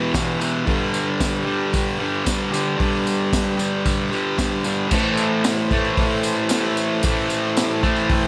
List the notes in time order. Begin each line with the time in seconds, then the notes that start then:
Already playing: B2 E3 E4 G4 B4
0.14 E2 B2 E3, kick, snare, open hi-hat, tambourine
0.40 B2 E3, tambourine
0.66 G2 D3 G3 D4 G4 B4, kick, open hi-hat
0.94 tambourine
1.20 kick, snare, open hi-hat, tambourine
1.46 D3 G3
1.73 kick, open hi-hat, tambourine
2.00 D3 G3
2.25 G2 D3 G3, kick, snare, open hi-hat, tambourine
2.52 D3 G3, tambourine
2.77 G2 D3 G3, kick, open hi-hat
3.07 tambourine
3.33 kick, snare, open hi-hat, tambourine
3.57 D3 G3, tambourine
3.86 kick, open hi-hat, tambourine
4.11 D3 G3, tambourine
4.38 G2 D3 G3, kick, snare, open hi-hat, tambourine
4.64 D3 G3, tambourine
4.91 A2 E3 E4 A4 C5, kick, crash, tambourine
4.95 A3
5.17 tambourine
5.44 snare, open hi-hat, tambourine
5.71 A2 E3 A3, kick, tambourine
5.84 tambourine
5.97 kick, open hi-hat
6.23 tambourine
6.49 A2 E3, snare, open hi-hat, tambourine
6.53 A3
6.77 tambourine
7.03 A2 E3, kick, open hi-hat, tambourine
7.08 A3
7.30 tambourine
7.57 snare, open hi-hat, tambourine
7.83 A2 E3 A3 E5, kick, tambourine
7.96 tambourine
8.09 G5, kick, open hi-hat